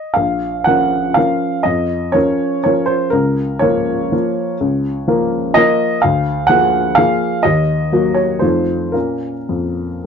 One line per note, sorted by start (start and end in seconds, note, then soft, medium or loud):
0.00 0.15 D#5 medium
0.14 0.64 A#1 soft
0.14 0.64 F5 medium
0.64 1.13 F3 soft
0.64 1.14 C#4 soft
0.64 1.14 A#4 soft
0.64 1.16 F#5 medium
1.14 1.62 F3 soft
1.14 1.62 C#4 soft
1.14 1.63 A#4 soft
1.14 1.65 F5 medium
1.63 2.14 F2 soft
1.63 2.14 D#5 medium
2.12 2.61 F3 soft
2.12 2.62 C#4 soft
2.12 2.62 A#4 soft
2.12 2.62 C#5 medium
2.64 3.10 F3 soft
2.64 3.10 C#4 soft
2.64 3.09 A#4 soft
2.64 2.89 C#5 medium
2.86 3.12 C5 medium
3.10 3.60 C#2 soft
3.10 3.60 A#4 medium
3.59 4.09 F3 soft
3.59 4.09 A#3 soft
3.59 4.09 A#4 soft
3.59 5.54 C#5 medium
4.12 4.57 F3 soft
4.12 4.57 A#3 soft
4.12 4.57 A#4 soft
4.61 5.06 C#2 soft
5.08 5.52 F3 soft
5.08 5.52 A#3 soft
5.08 5.52 A#4 soft
5.54 5.99 F3 soft
5.54 6.00 A#3 soft
5.54 6.00 A#4 soft
5.54 6.02 D#5 medium
6.02 6.49 D2 soft
6.02 6.49 F5 medium
6.47 6.94 F3 soft
6.47 6.94 A#3 soft
6.47 6.94 G#4 soft
6.47 6.97 F#5 medium
6.95 7.41 F3 soft
6.95 7.42 A#3 soft
6.95 7.41 G#4 soft
6.95 7.44 F5 medium
7.43 7.91 D#2 soft
7.43 8.16 D#5 medium
7.92 8.39 F#3 soft
7.92 8.39 A#3 soft
7.92 8.40 F#4 soft
8.14 8.42 C#5 medium
8.39 8.93 F2 soft
8.39 8.91 F3 soft
8.39 8.91 A3 soft
8.39 8.91 D#4 soft
8.39 8.93 C5 medium
8.92 9.32 A#2 soft
8.92 9.37 A#3 soft
8.92 9.37 C#4 soft
8.92 10.06 A#4 soft
9.49 9.88 F2 soft